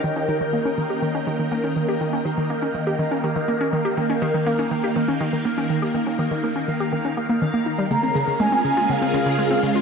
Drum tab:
SH |----------------|----------------|----------------|----------------|
T1 |----------------|----------------|----------------|----------------|

SH |xxxxxxxxxxxxxxxx|
T1 |o---o-----------|